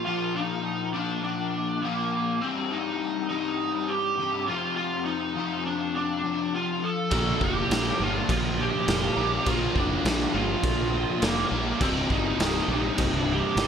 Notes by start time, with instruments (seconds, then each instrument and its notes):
0.05 overdriven electric guitar A#2 F3 A#3, lead electric guitar F4
0.36 lead electric guitar D#4
0.94 overdriven electric guitar A#2 F3 A#3, lead electric guitar D4
1.24 lead electric guitar D4
1.82 overdriven electric guitar A#2 F3 A#3, lead electric guitar A#3
2.41 overdriven electric guitar C2 G2 C3, lead electric guitar C4
2.71 lead electric guitar D#4
3.29 overdriven electric guitar C2 G2 C3, lead electric guitar D#4
3.88 lead electric guitar G4
4.17 overdriven electric guitar C2 G2 C3
4.47 overdriven electric guitar F2 C3 F3, lead electric guitar F4
4.76 lead electric guitar F4
5.05 lead electric guitar D#4
5.35 overdriven electric guitar F2 C3 F3
5.66 lead electric guitar D4
5.96 lead electric guitar D4
6.23 overdriven electric guitar F2 C3 F3
6.55 lead electric guitar F4
6.84 lead electric guitar A4
7.11 fingered electric bass A#1, overdriven electric guitar A#2 F3 A#3 D4 F4 A#4, kick, crash
7.41 fingered electric bass F1, lead electric guitar G4, kick
7.70 fingered electric bass A#1, snare, crash
8.00 fingered electric bass G1, overdriven electric guitar A#2 F3 A#3, lead electric guitar F4
8.29 fingered electric bass A#1, lead electric guitar F4, kick, crash
8.58 distorted electric guitar A#2 F3 A#3, lead electric guitar G4
8.88 fingered electric bass F1, overdriven electric guitar A#2 F3 A#3, snare, crash
9.17 fingered electric bass A#1, overdriven electric guitar A#2 F3 A#3 D4 F4 A#4
9.46 fingered electric bass A#1, overdriven electric guitar A#2 F3 A#3 D4 F4 A#4, lead electric guitar F4, kick, crash
9.76 fingered electric bass F1, lead electric guitar D4, kick
10.05 fingered electric bass A#1, snare, crash
10.33 fingered electric bass G1, overdriven electric guitar A#2 F3 A#3, lead electric guitar F4
10.63 fingered electric bass A#1, kick, crash
10.92 distorted electric guitar A#2 F3 A#3
11.21 fingered electric bass F1, overdriven electric guitar A#2 F3 A#3, lead electric guitar A#3, snare, crash
11.51 fingered electric bass A#1, overdriven electric guitar A#2 F3 A#3 D4 F4 A#4
11.79 fingered electric bass C1, overdriven electric guitar C2 G2 C3, lead electric guitar C4, kick, crash
11.84 overdriven electric guitar G3 D#4
12.10 fingered electric bass G1, lead electric guitar D#4, kick
12.39 fingered electric bass C1, snare, crash
12.68 fingered electric bass A#1, overdriven electric guitar C2 G2 C3, lead electric guitar D#4
12.98 fingered electric bass C1, kick, crash
13.15 lead electric guitar D4
13.27 distorted electric guitar C2 G2 C3
13.32 lead electric guitar G4
13.56 fingered electric bass G1, overdriven electric guitar C2 G2 C3, snare, crash